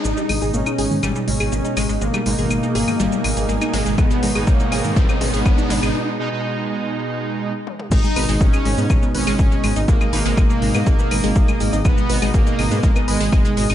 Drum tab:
CC |----------------|----------------|----------------|----------------|
HH |--o---o---o---o-|--o---o---o---o-|--o---o---o---o-|----------------|
SH |xxxxxx-xxx-xxxxx|xxxxxx-xxx-xxxxx|xxxxxx-xxx-xxxxx|----------------|
CL |--x--x--x--x--x-|-x--x--x--x--x--|x--x--x--x--x--x|----------------|
T1 |----------------|----------------|----------------|--------------o-|
T2 |o--o--o-o-----o-|o-----o-o--o--o-|o-o-o-o-o-o-o-o-|---------------o|
BD |----------------|----------------|o---o---o---o---|----------------|

CC |x---------------|----------------|----------------|
HH |--o---o---o---o-|--o---o---o---o-|--o---o---o---o-|
SH |xxxxxx-xxx-xxxxx|xxxxxx-xxx-xxxxx|xxxxxx-xxx-xxxxx|
CL |--x--x--x--x--x-|-x--x--x--x--x--|x--x--x--x--x--x|
T1 |----------------|----------------|----------------|
T2 |----------------|----------------|----------------|
BD |o---o---o---o---|o---o---o---o---|o---o---o---o---|